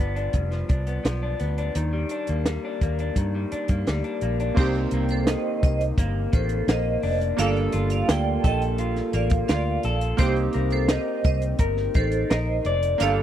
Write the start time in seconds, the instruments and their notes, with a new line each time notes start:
Already playing: clean electric guitar G2 F3 D4
0.00 fingered electric bass G1, clean electric guitar B3
0.16 clean electric guitar D4, closed hi-hat
0.33 fingered electric bass F1, clean electric guitar G2, kick, closed hi-hat
0.51 clean electric guitar F3, snare, closed hi-hat
0.69 fingered electric bass C2, clean electric guitar D4, kick, closed hi-hat
0.87 clean electric guitar B3, closed hi-hat
1.04 fingered electric bass B1, clean electric guitar F3, snare, closed hi-hat
1.23 clean electric guitar D4
1.40 fingered electric bass D2, clean electric guitar B3, closed hi-hat
1.58 clean electric guitar D4, closed hi-hat
1.75 fingered electric bass D#2, clean electric guitar D#3, closed hi-hat
1.93 clean electric guitar G3
2.09 clean electric guitar D4, closed hi-hat
2.27 fingered electric bass D#2, clean electric guitar A#3, closed hi-hat
2.46 clean electric guitar G3, snare, closed hi-hat
2.65 clean electric guitar D4
2.81 fingered electric bass D#2, clean electric guitar A#3, kick, closed hi-hat
2.99 clean electric guitar D4, closed hi-hat
3.16 fingered electric bass G2, clean electric guitar D#3, kick, closed hi-hat
3.35 clean electric guitar G3
3.52 clean electric guitar D4, muted fingered electric bass stroke, closed hi-hat
3.68 fingered electric bass G2, clean electric guitar A#3, kick, closed hi-hat
3.87 fingered electric bass D2, clean electric guitar G3, snare, closed hi-hat
4.04 clean electric guitar D4, closed hi-hat
4.21 fingered electric bass A#1, clean electric guitar A#3, closed hi-hat
4.40 clean electric guitar D4, closed hi-hat
4.55 fingered electric bass C2, clean electric guitar C3, synth keys A#3 C4 D#4, vibraphone G4 C5, kick, crash
4.60 synth keys G4
4.75 closed hi-hat
4.91 fingered electric bass C2, clean electric guitar A#3, closed hi-hat
5.09 vibraphone A4 C5, closed hi-hat
5.27 clean electric guitar D#3, vibraphone C5 D#5, snare, closed hi-hat
5.63 fingered electric bass C2, vibraphone C5 D#5, kick, closed hi-hat
5.81 closed hi-hat
5.98 fingered electric bass G1, clean electric guitar A#3, kick, closed hi-hat
6.33 fingered electric bass A1, clean electric guitar D#3, vibraphone A4 C5, kick, closed hi-hat
6.49 closed hi-hat
6.68 fingered electric bass A#1, clean electric guitar A#3, vibraphone C5 D#5, snare, closed hi-hat
7.03 fingered electric bass F1, clean electric guitar D4, open hi-hat
7.21 closed hi-hat
7.37 fingered electric bass G1, clean electric guitar G3 A4, synth keys A#3 D4 F4, vibraphone D5 F5, closed hi-hat
7.41 synth keys A4
7.57 closed hi-hat
7.72 fingered electric bass G1, clean electric guitar F4, closed hi-hat
7.90 vibraphone D5 F5, closed hi-hat
8.08 fingered electric bass D2, clean electric guitar A#3, vibraphone D5 G5, snare, closed hi-hat
8.44 fingered electric bass A#1, clean electric guitar A4, vibraphone D#5 G5, kick, closed hi-hat
8.62 closed hi-hat
8.78 clean electric guitar F4, closed hi-hat
8.96 snare, closed hi-hat
9.13 fingered electric bass A1, clean electric guitar A#3, vibraphone D5 F5, closed hi-hat
9.30 kick, closed hi-hat
9.48 fingered electric bass D2, clean electric guitar F4, vibraphone D5 F5, snare, closed hi-hat
9.83 fingered electric bass A#1, clean electric guitar A4, closed hi-hat
10.01 closed hi-hat
10.17 fingered electric bass C2, synth keys A#3 C4 D#4, clean electric guitar C4, vibraphone G4 C5, kick, closed hi-hat
10.22 synth keys G4
10.36 closed hi-hat
10.53 fingered electric bass C2, clean electric guitar A#4, closed hi-hat
10.70 vibraphone A4 C5, closed hi-hat
10.88 clean electric guitar D#4, vibraphone C5 D#5, snare, closed hi-hat
11.24 fingered electric bass C2, vibraphone C5 D#5, kick, closed hi-hat
11.42 closed hi-hat
11.59 fingered electric bass G1, clean electric guitar A#4, kick, closed hi-hat
11.77 snare
11.94 fingered electric bass A1, clean electric guitar D#4, vibraphone A4 C5, kick, closed hi-hat
12.12 closed hi-hat
12.30 fingered electric bass A#1, clean electric guitar A#4, vibraphone C5 D#5, snare, closed hi-hat
12.65 fingered electric bass F1, clean electric guitar D5, closed hi-hat
12.83 closed hi-hat
12.98 fingered electric bass G1, synth keys A#3 D4 F4, vibraphone D5 F5, closed hi-hat
13.02 clean electric guitar G3 A4, synth keys A4